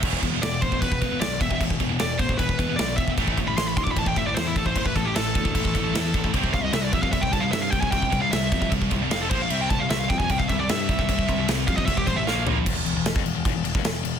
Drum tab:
CC |x-x-x-x-x-x-x-x-|x-x-x-x-x-x-x-x-|x-x-x-x-x-x-x-x-|x-x-x-x-x-x-x-x-|
SD |----o-------o---|----o-------o---|----o-------o---|----o-------o---|
FT |----------------|----------------|----------------|----------------|
BD |ooo---ooooo---oo|ooo---ooooo---oo|ooo---ooooo---oo|ooo---ooooo---oo|

CC |x-x-x-x-x-x-x-x-|x-x-x-x-x-x-x-x-|x-x-x-x-x-x-x-x-|x-x-x-x-x-x-----|
SD |----o-------o---|----o-------o---|----o-------o---|----o-------o---|
FT |----------------|----------------|----------------|--------------o-|
BD |ooo---ooooo---oo|ooo---ooooo---o-|--o---ooooo---oo|ooo---ooooo-----|

CC |x-x-x-x-x-x-x-x-|
SD |----o-------o---|
FT |----------------|
BD |o----o--o--o----|